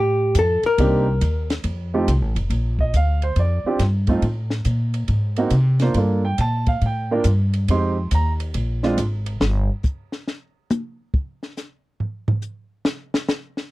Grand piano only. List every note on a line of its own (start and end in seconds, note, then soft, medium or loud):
0.79 1.04 A#3 medium
0.79 1.05 C4 medium
0.79 1.05 D4 medium
0.79 1.05 D#4 medium
0.79 1.05 G4 medium
1.94 2.07 A3 medium
1.94 2.07 C4 medium
1.94 2.07 D#4 medium
1.94 2.07 F4 medium
1.94 2.07 G4 medium
2.80 2.94 D#5 medium
2.96 3.23 F5 medium
3.23 3.37 C5 medium
3.39 3.79 D5 medium
3.66 3.79 C4 medium
3.66 3.80 D4 medium
3.66 3.80 F4 medium
3.66 3.80 G4 medium
4.08 4.22 A3 medium
4.08 4.22 C4 medium
4.08 4.22 D#4 medium
4.08 4.22 F4 medium
5.38 5.51 A#3 medium
5.38 5.51 C4 medium
5.38 5.51 D#4 medium
5.38 5.52 F#4 medium
5.82 5.95 A#3 medium
5.82 5.95 D4 medium
5.82 5.95 F4 medium
5.82 5.95 C5 medium
5.97 6.22 A#3 medium
5.97 6.22 D4 soft
5.97 6.22 F4 medium
5.97 6.22 A4 medium
6.25 6.39 G5 medium
6.41 6.67 A5 loud
6.68 6.82 F5 medium
6.86 7.24 G5 medium
7.11 7.24 A#3 medium
7.11 7.25 D4 medium
7.11 7.25 F4 medium
7.11 7.25 A#4 medium
7.70 7.95 G#3 medium
7.70 7.95 C4 medium
7.70 7.95 D#4 medium
7.70 7.95 G4 medium
7.70 8.10 C6 medium
8.15 8.31 A#5 medium
8.83 8.97 G#3 medium
8.83 8.97 C4 medium
8.83 8.97 D4 medium
8.83 8.97 F4 medium